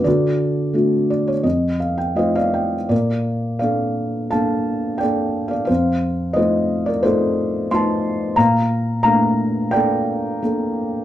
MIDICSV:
0, 0, Header, 1, 2, 480
1, 0, Start_track
1, 0, Key_signature, -2, "major"
1, 0, Tempo, 707547
1, 35, Time_signature, 4, 2, 24, 8
1, 3396, Tempo, 677966
1, 7672, End_track
2, 0, Start_track
2, 0, Title_t, "Felt piano"
2, 0, Program_c, 0, 0
2, 0, Control_c, 0, 64, 127
2, 28, Note_on_c, 0, 74, 64
2, 35, Note_on_c, 0, 50, 58
2, 44, Control_c, 0, 64, 0
2, 45, Note_on_c, 0, 66, 45
2, 47, Note_on_c, 0, 69, 45
2, 166, Control_c, 0, 64, 127
2, 498, Note_off_c, 0, 66, 0
2, 498, Note_on_c, 0, 57, 40
2, 503, Note_on_c, 0, 62, 37
2, 508, Note_on_c, 0, 66, 45
2, 737, Note_off_c, 0, 74, 0
2, 748, Note_on_c, 0, 74, 59
2, 856, Note_off_c, 0, 74, 0
2, 864, Note_on_c, 0, 73, 55
2, 881, Note_off_c, 0, 57, 0
2, 884, Note_off_c, 0, 62, 0
2, 887, Note_off_c, 0, 66, 0
2, 954, Note_off_c, 0, 50, 0
2, 973, Note_on_c, 0, 75, 51
2, 974, Note_off_c, 0, 73, 0
2, 974, Note_on_c, 0, 41, 53
2, 988, Control_c, 0, 64, 0
2, 1124, Control_c, 0, 64, 127
2, 1202, Note_off_c, 0, 75, 0
2, 1221, Note_on_c, 0, 77, 51
2, 1338, Note_off_c, 0, 77, 0
2, 1341, Note_on_c, 0, 79, 54
2, 1454, Note_off_c, 0, 69, 0
2, 1461, Note_on_c, 0, 57, 37
2, 1463, Note_off_c, 0, 79, 0
2, 1465, Note_on_c, 0, 63, 32
2, 1468, Note_on_c, 0, 75, 65
2, 1469, Note_on_c, 0, 77, 49
2, 1473, Note_on_c, 0, 65, 39
2, 1483, Note_on_c, 0, 72, 44
2, 1586, Note_off_c, 0, 77, 0
2, 1597, Note_on_c, 0, 77, 76
2, 1598, Note_off_c, 0, 72, 0
2, 1603, Note_off_c, 0, 75, 0
2, 1613, Note_on_c, 0, 74, 47
2, 1721, Note_on_c, 0, 79, 54
2, 1864, Note_off_c, 0, 57, 0
2, 1867, Note_off_c, 0, 63, 0
2, 1872, Note_off_c, 0, 65, 0
2, 1942, Note_off_c, 0, 41, 0
2, 1951, Note_off_c, 0, 74, 0
2, 1952, Note_off_c, 0, 79, 0
2, 1961, Note_on_c, 0, 74, 62
2, 1963, Note_on_c, 0, 46, 51
2, 1974, Note_on_c, 0, 70, 46
2, 1981, Note_off_c, 0, 77, 0
2, 1982, Control_c, 0, 64, 0
2, 2092, Control_c, 0, 64, 127
2, 2419, Note_off_c, 0, 74, 0
2, 2425, Note_off_c, 0, 70, 0
2, 2437, Note_on_c, 0, 77, 68
2, 2445, Note_on_c, 0, 74, 51
2, 2450, Note_on_c, 0, 58, 36
2, 2455, Note_on_c, 0, 62, 33
2, 2458, Note_on_c, 0, 69, 43
2, 2895, Note_off_c, 0, 77, 0
2, 2899, Note_off_c, 0, 74, 0
2, 2914, Note_off_c, 0, 58, 0
2, 2916, Note_off_c, 0, 62, 0
2, 2918, Note_off_c, 0, 69, 0
2, 2921, Note_on_c, 0, 81, 70
2, 2928, Note_on_c, 0, 77, 55
2, 2934, Note_on_c, 0, 58, 36
2, 2934, Note_on_c, 0, 62, 36
2, 2939, Note_on_c, 0, 69, 40
2, 3371, Note_off_c, 0, 77, 0
2, 3377, Note_on_c, 0, 79, 66
2, 3387, Note_off_c, 0, 58, 0
2, 3387, Note_off_c, 0, 62, 0
2, 3390, Note_off_c, 0, 69, 0
2, 3394, Note_on_c, 0, 74, 52
2, 3401, Note_on_c, 0, 58, 38
2, 3406, Note_on_c, 0, 62, 34
2, 3409, Note_off_c, 0, 81, 0
2, 3409, Note_on_c, 0, 69, 40
2, 3732, Note_on_c, 0, 77, 65
2, 3733, Note_off_c, 0, 74, 0
2, 3752, Note_on_c, 0, 74, 50
2, 3761, Note_off_c, 0, 79, 0
2, 3841, Note_off_c, 0, 77, 0
2, 3848, Note_off_c, 0, 46, 0
2, 3852, Note_on_c, 0, 77, 69
2, 3868, Note_on_c, 0, 72, 57
2, 3869, Note_off_c, 0, 58, 0
2, 3869, Note_off_c, 0, 74, 0
2, 3871, Note_off_c, 0, 62, 0
2, 3873, Note_off_c, 0, 69, 0
2, 3881, Note_on_c, 0, 41, 56
2, 3892, Control_c, 0, 64, 0
2, 4029, Control_c, 0, 64, 127
2, 4328, Note_off_c, 0, 72, 0
2, 4336, Note_on_c, 0, 75, 73
2, 4352, Note_on_c, 0, 57, 39
2, 4356, Note_on_c, 0, 63, 39
2, 4357, Note_on_c, 0, 72, 60
2, 4363, Note_off_c, 0, 77, 0
2, 4364, Note_on_c, 0, 65, 44
2, 4693, Note_off_c, 0, 72, 0
2, 4708, Note_on_c, 0, 74, 72
2, 4719, Note_off_c, 0, 75, 0
2, 4723, Note_on_c, 0, 70, 52
2, 4820, Note_off_c, 0, 57, 0
2, 4822, Note_off_c, 0, 63, 0
2, 4826, Note_off_c, 0, 65, 0
2, 4826, Note_on_c, 0, 72, 77
2, 4831, Note_on_c, 0, 57, 42
2, 4833, Note_off_c, 0, 70, 0
2, 4837, Note_on_c, 0, 63, 39
2, 4837, Note_on_c, 0, 65, 45
2, 4838, Note_off_c, 0, 74, 0
2, 4839, Note_on_c, 0, 69, 57
2, 5279, Note_off_c, 0, 72, 0
2, 5285, Note_off_c, 0, 69, 0
2, 5295, Note_off_c, 0, 57, 0
2, 5298, Note_off_c, 0, 63, 0
2, 5298, Note_off_c, 0, 65, 0
2, 5307, Note_on_c, 0, 57, 40
2, 5313, Note_on_c, 0, 84, 77
2, 5314, Note_on_c, 0, 63, 36
2, 5316, Note_on_c, 0, 65, 42
2, 5336, Note_on_c, 0, 81, 62
2, 5755, Note_off_c, 0, 41, 0
2, 5765, Note_off_c, 0, 57, 0
2, 5766, Note_off_c, 0, 81, 0
2, 5769, Note_off_c, 0, 63, 0
2, 5770, Note_off_c, 0, 65, 0
2, 5771, Note_on_c, 0, 82, 82
2, 5780, Note_on_c, 0, 46, 57
2, 5787, Note_on_c, 0, 77, 67
2, 5792, Control_c, 0, 64, 0
2, 5797, Note_off_c, 0, 84, 0
2, 5902, Control_c, 0, 64, 127
2, 6234, Note_off_c, 0, 82, 0
2, 6235, Note_off_c, 0, 77, 0
2, 6245, Note_on_c, 0, 82, 87
2, 6256, Note_on_c, 0, 58, 41
2, 6257, Note_on_c, 0, 77, 68
2, 6259, Note_on_c, 0, 57, 47
2, 6259, Note_on_c, 0, 62, 43
2, 6720, Note_off_c, 0, 77, 0
2, 6728, Note_on_c, 0, 79, 88
2, 6733, Note_off_c, 0, 58, 0
2, 6734, Note_off_c, 0, 57, 0
2, 6734, Note_off_c, 0, 62, 0
2, 6740, Note_on_c, 0, 74, 66
2, 6744, Note_on_c, 0, 58, 44
2, 6749, Note_on_c, 0, 69, 50
2, 6750, Note_on_c, 0, 62, 39
2, 6757, Note_off_c, 0, 82, 0
2, 7218, Note_off_c, 0, 58, 0
2, 7220, Note_off_c, 0, 69, 0
2, 7221, Note_off_c, 0, 62, 0
2, 7232, Note_on_c, 0, 62, 39
2, 7233, Note_on_c, 0, 58, 43
2, 7237, Note_on_c, 0, 69, 48
2, 7672, Note_off_c, 0, 46, 0
2, 7672, Note_off_c, 0, 58, 0
2, 7672, Note_off_c, 0, 62, 0
2, 7672, Note_off_c, 0, 69, 0
2, 7672, Note_off_c, 0, 74, 0
2, 7672, Note_off_c, 0, 79, 0
2, 7672, End_track
0, 0, End_of_file